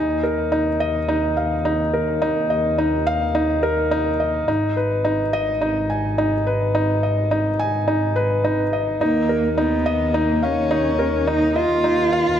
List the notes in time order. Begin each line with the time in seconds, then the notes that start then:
Already playing: D#2 D#4
0.23 A#4
0.52 D#4
0.80 D#5
1.08 D#4
1.37 F5
1.65 D#4
1.94 A#4
2.22 D#4
2.50 D#5
2.78 D#4
3.07 F5
3.35 D#4
3.63 A#4
3.91 D#4
4.20 D#5
4.48 G#1 D#4
4.77 B4
5.05 D#4
5.33 D#5
5.61 D#4
5.90 G#5
6.18 D#4
6.47 B4
6.75 D#4
7.03 D#5
7.31 D#4
7.59 G#5
7.88 D#4
8.16 B4
8.44 D#4
8.73 D#5
9.01 D#2 A#3 D#4
9.29 A#4
9.58 B3 D#4
9.86 D#5
10.14 A#3 D#4
10.43 C#4 F5
10.71 D#4
10.99 A#4
11.27 D#4
11.56 F4 D#5
11.84 D#4
12.13 F5